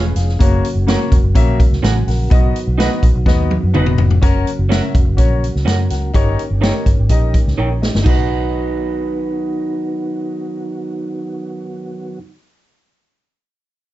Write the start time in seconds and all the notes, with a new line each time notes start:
Already playing: E1 F3 G#3 C#4 G#4 B4 G#5
0.16 F1 G#4 F5, snare, closed hi-hat
0.29 snare
0.39 F#1 C#3 F#3 A#3 C#4 F#4 A#4 C#5, kick, closed hi-hat
0.65 closed hi-hat
0.75 F#1
0.87 A#3 C#4 F#4 A#4 C#5 F#5, snare, closed hi-hat
1.12 E1, kick, closed hi-hat
1.24 F#1
1.35 A#1 A#3 C#4 F#4 A#4 E5, kick, closed hi-hat
1.60 kick, closed hi-hat
1.71 C#2, snare
1.83 A1 C#4 F#4 A#4 F#5 G#5, snare, closed hi-hat
2.07 A#1 A#4 F#5, snare, open hi-hat
2.30 B1 D#3 B3 D#4 F#4 B4 D#5, kick, closed hi-hat
2.56 closed hi-hat
2.67 B1
2.78 B3 D#4 F#4 B4 D#5 F#5, snare, closed hi-hat
3.03 A#1, kick, closed hi-hat
3.15 B1
3.26 D#2 B3 D#4 F#4 B4 D#5, kick, snare
3.51 high tom
3.63 F#2
3.74 E1 B3 D#4 F#4 B4 D#5 F#5, mid tom
3.86 mid tom
3.98 F1, floor tom
4.11 floor tom
4.21 F#1 C#3 F#3 A#3 C#4 F#4 A#4 C#5, kick, closed hi-hat
4.47 closed hi-hat
4.59 F#1
4.69 C#4 F#4 A#4 E5 F#5, snare, closed hi-hat
4.95 E1, kick, closed hi-hat
5.08 F#1
5.17 A#1 C#4 F#4 A#4 C#5, kick, closed hi-hat
5.44 closed hi-hat
5.55 C#2, snare
5.65 F#2 C#4 F#4 A#4 C#5 F#5 A#5, snare, closed hi-hat
5.90 C#2 A#4 F#5, snare, closed hi-hat
6.13 G1 D#3 C#4 D#4 G4 A#4 C#5, kick, closed hi-hat
6.39 closed hi-hat
6.51 G1
6.61 D#4 G4 A#4 C#5 G5, snare, closed hi-hat
6.86 G1, kick, closed hi-hat
6.99 G#1
7.09 A#1 D#4 G4 A#4 D#5, kick, closed hi-hat
7.34 kick, closed hi-hat
7.47 C#2, snare
7.58 A#1 D#4 A#4 C#5 G5 A#5
7.82 G4 D#5, snare
7.95 G1, snare
8.02 B1 B3 D#4 F#4, kick, crash
8.06 D#3 F#3 B4 D#5 F#5